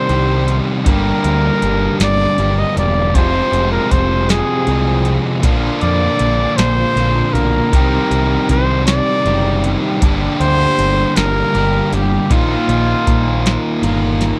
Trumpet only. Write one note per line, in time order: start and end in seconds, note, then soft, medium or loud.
0.00 0.58 C5 loud
0.87 1.97 A#4 medium
2.03 2.60 D5 loud
2.59 2.77 D#5 medium
2.78 3.17 D5 medium
3.16 3.71 C5 loud
3.72 3.93 A#4 medium
3.92 4.32 C5 medium
4.30 5.16 G#4 medium
5.82 6.58 D5 loud
6.57 7.35 C5 loud
7.33 8.49 A#4 medium
8.51 8.86 C5 medium
8.86 9.69 D5 medium
10.41 11.18 C5 loud
11.16 11.93 A#4 loud
11.95 12.29 G4 medium
12.33 13.80 F4 medium